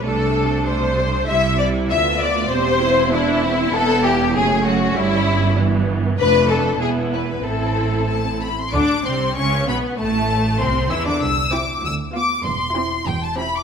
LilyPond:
<<
  \new Staff \with { instrumentName = "Violin section" } { \time 2/4 \key a \minor \tempo 4 = 97 a'4 c''4 | e''8 d''8 e''8 d''8 | c''4 e'4 | a'8 g'8 gis'8 fis'8 |
e'4 r4 | b'8 a'8 gis'8 b'8 | a'4 a''8 b''16 c'''16 | d'''8 c'''8 cis'''8 b''8 |
a''4 c'''8 e'''16 d'''16 | e'''8 d'''8 e'''8 d'''8 | c'''4 g''16 a''16 b''16 d'''16 | }
  \new Staff \with { instrumentName = "Violin section" } { \time 2/4 \key a \minor a'4 c''4 | e''8 d''8 e''8 d''8 | c''4 e'4 | a'8 g'8 gis'8 fis'8 |
e'4 r4 | b'8 a'8 gis'8 b'8 | a'4. r8 | d'8 c'8 cis'8 b8 |
a4 c'8 e'16 d'16 | r8 <g' c''>8 r8 <f' f''>8 | r8 <g' c''>8 r8 <g' c''>8 | }
  \new Staff \with { instrumentName = "Viola section" } { \time 2/4 \key a \minor << { d'2 | e'4 f'4 | g'8 e'4. | e'4 cis'4~ |
cis'4 b4 | d'4 e'4 | e'4. r8 | d'8 c'8 cis'8 b8 |
a4 c'8 e'16 d'16 | r8 e'8 r8 f'8 | r8 e'8 r8 e'8 | } \\ { a4 a4 | g4 b4 | c'4 d'8 c'8 | b4 a4 |
g4 e4 | a4 b4 | c'4. r8 | r2 |
r2 | r8 c'8 r8 b8 | r8 c'8 r8 c'8 | } >> }
  \new Staff \with { instrumentName = "Cello section" } { \clef bass \time 2/4 \key a \minor c2 | c4 d,4 | e,2 | e,4 fis,4 |
g,2 | f,4 e,4 | a,4. r8 | d8 c8 cis8 b,8 |
a,4 c8 e16 d16 | c4 d,4 | e,4 e,4 | }
  \new Staff \with { instrumentName = "Double bass section" } { \clef bass \time 2/4 \key a \minor c,2 | c,4 d,4 | e,,2 | e,,4 fis,,4 |
g,,2 | f,,4 e,,4 | a,,4. r8 | d,8 c,8 cis,8 b,,8 |
a,,4 c,8 e,16 r16 | c,4 d,4 | e,,4 e,,4 | }
>>